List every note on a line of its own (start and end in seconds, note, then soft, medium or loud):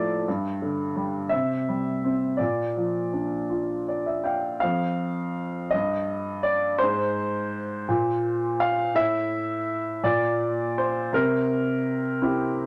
0.00 0.24 A2 soft
0.00 0.25 F3 soft
0.00 0.26 A3 soft
0.00 0.25 D5 soft
0.00 1.26 E5 medium
0.00 0.29 A5 soft
0.28 1.29 G2 medium
0.62 1.30 D3 soft
0.96 1.30 G3 soft
1.29 2.36 C3 soft
1.29 2.41 E5 medium
1.69 2.37 G3 soft
2.04 2.38 C4 soft
2.37 4.58 A#2 soft
2.37 3.83 D5 soft
2.76 4.22 F3 soft
3.13 4.58 D4 soft
3.50 4.58 F4 soft
3.88 4.05 D5 soft
4.06 4.24 E5 soft
4.24 4.59 F5 soft
4.24 4.58 G5 soft
4.60 5.69 F2 medium
4.60 5.74 F5 medium
5.71 6.78 G2 medium
5.71 6.46 D#5 medium
6.43 6.77 D5 medium
6.78 7.85 G#2 medium
6.78 8.64 C5 medium
7.89 8.92 A#2 medium
8.60 8.96 F5 medium
8.95 10.00 A2 medium
8.95 10.00 E5 medium
10.03 11.09 A#2 medium
10.03 10.79 D5 medium
10.78 11.14 C5 medium
11.13 12.66 C3 medium
11.13 12.66 A#4 medium
12.22 12.66 C4 soft
12.22 12.66 E4 soft
12.22 12.66 G4 soft